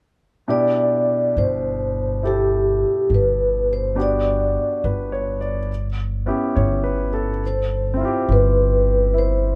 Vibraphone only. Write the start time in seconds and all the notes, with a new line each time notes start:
0.50 D5
1.38 C5
2.27 G4
3.14 B4
3.73 C5
4.02 D5
7.47 C5
8.32 B4
9.18 C5